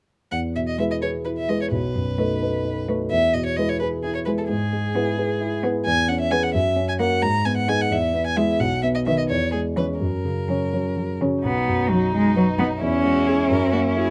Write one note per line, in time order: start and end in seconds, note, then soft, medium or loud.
0.32 1.68 E2 soft
0.32 0.40 F#5 medium
0.56 0.93 B2 soft
0.56 0.60 E5 soft
0.68 0.79 D#5 soft
0.78 0.95 G#3 soft
0.78 1.00 E4 soft
0.78 1.00 G#4 soft
0.78 1.00 B4 soft
0.78 0.84 E5 medium
0.91 0.96 D#5 soft
1.02 1.23 E4 soft
1.02 1.23 G#4 soft
1.02 1.23 B4 soft
1.02 1.10 C#5 medium
1.25 1.47 E4 soft
1.25 1.29 B4 soft
1.38 1.50 E5 soft
1.48 1.66 G#3 soft
1.48 1.69 E4 soft
1.48 1.70 G#4 soft
1.48 1.70 B4 soft
1.48 1.60 D#5 soft
1.62 1.66 C#5 soft
1.71 3.06 B1 soft
1.71 2.85 B4 soft
1.95 2.32 F#2 soft
2.18 2.35 A3 soft
2.18 2.39 D#4 soft
2.18 2.39 A4 soft
2.18 2.39 B4 soft
2.42 2.62 D#4 soft
2.42 2.62 A4 soft
2.42 2.63 B4 soft
2.65 2.86 D#4 soft
2.88 3.05 A3 soft
2.88 3.09 D#4 soft
2.88 3.09 A4 soft
2.88 3.09 B4 soft
3.11 4.45 E2 soft
3.11 3.35 E5 medium
3.33 3.71 B2 soft
3.33 3.45 D#5 medium
3.46 3.58 C#5 soft
3.56 3.74 G#3 soft
3.56 3.78 E4 soft
3.56 3.78 G#4 soft
3.56 3.79 B4 soft
3.56 3.70 D#5 soft
3.69 3.79 C#5 soft
3.79 4.01 E4 soft
3.79 4.01 G#4 soft
3.79 3.87 B4 medium
3.79 4.01 B4 soft
4.03 4.25 E4 soft
4.03 4.14 G#4 soft
4.15 4.19 C#5 soft
4.26 4.43 G#3 soft
4.26 4.47 E4 soft
4.26 4.47 G#4 soft
4.26 4.30 B4 soft
4.26 4.47 B4 soft
4.38 4.42 A4 soft
4.48 5.82 G#2 soft
4.48 5.60 G#4 medium
4.73 5.09 G#3 soft
4.95 5.12 B3 soft
4.95 5.15 E4 soft
4.95 5.16 G#4 soft
4.95 5.16 B4 soft
5.18 5.38 E4 soft
5.18 5.38 G#4 soft
5.18 5.38 B4 soft
5.41 5.62 E4 soft
5.63 5.80 B3 soft
5.63 5.84 E4 soft
5.63 5.84 G#4 soft
5.63 5.84 B4 soft
5.85 6.52 E2 soft
5.85 6.10 G#5 medium
6.08 6.45 C#4 soft
6.08 6.20 F#5 medium
6.20 6.33 E5 medium
6.31 6.48 B3 soft
6.31 6.52 G#4 soft
6.31 6.52 B4 soft
6.31 6.44 G#5 medium
6.43 6.53 F#5 medium
6.54 7.20 F#2 soft
6.54 6.87 E5 medium
6.76 7.13 C#4 soft
6.89 6.93 G#5 medium
6.99 7.16 A#3 soft
6.99 7.20 F#4 soft
6.99 7.20 A#4 soft
6.99 7.24 F#5 medium
7.22 7.89 G#2 soft
7.22 7.47 A#5 medium
7.45 7.82 B3 soft
7.45 7.56 G#5 medium
7.57 7.70 F#5 medium
7.68 7.85 B3 soft
7.68 7.89 D#4 soft
7.68 7.89 G#4 soft
7.68 7.82 G#5 medium
7.81 7.94 F#5 medium
7.90 8.58 E2 soft
7.90 8.26 E5 medium
8.14 8.51 B3 soft
8.26 8.38 G#5 medium
8.36 8.54 G#3 medium
8.36 8.58 E4 soft
8.36 8.58 G#4 soft
8.36 8.61 E5 medium
8.60 9.28 B1 soft
8.60 8.82 F#5 medium
8.83 9.20 B3 soft
8.83 8.88 E5 medium
8.95 8.99 D#5 medium
9.06 9.24 D#3 soft
9.06 9.28 D#4 soft
9.06 9.28 B4 soft
9.06 9.17 E5 medium
9.18 9.23 D#5 medium
9.29 9.99 E2 soft
9.29 9.51 C#5 medium
9.52 9.91 G#3 soft
9.52 9.60 G#4 soft
9.76 9.94 E3 soft
9.76 9.98 C#4 soft
9.76 9.85 B4 soft
9.76 9.99 C#5 soft
10.00 11.40 F#2 soft
10.00 11.18 A#4 soft
10.25 10.63 C#3 soft
10.48 10.66 C#3 soft
10.48 10.70 F#3 soft
10.48 10.71 C#4 soft
10.48 10.71 C#5 soft
10.73 10.95 F#3 soft
10.73 10.95 C#4 soft
10.73 10.95 C#5 soft
10.97 11.20 F#3 soft
11.21 11.38 C#3 soft
11.21 11.42 F#3 soft
11.21 11.42 C#4 soft
11.21 11.43 C#5 soft
11.44 12.78 B1 soft
11.44 11.92 B3 medium
11.44 12.78 D#4 soft
11.68 12.05 F#2 soft
11.90 12.13 F#3 soft
11.90 12.27 F#3 soft
12.13 12.36 G#3 medium
12.13 12.50 D#4 soft
12.13 12.83 D#4 soft
12.36 12.44 F#3 soft
12.36 12.73 B4 soft
12.58 12.66 B3 medium
12.58 12.82 D#4 soft
12.81 13.48 E2 soft
12.81 13.93 C#4 medium
12.81 13.03 E4 soft
12.81 14.10 E4 soft
13.04 13.41 G#3 soft
13.04 13.28 F#4 soft
13.27 13.48 E4 soft
13.27 13.48 G#4 soft
13.49 14.10 F#2 soft
13.49 13.71 A#4 medium
13.72 14.09 A#3 soft
13.72 13.80 F#4 medium
13.95 14.10 E4 soft
13.95 14.10 F#4 soft
13.95 14.10 G#4 medium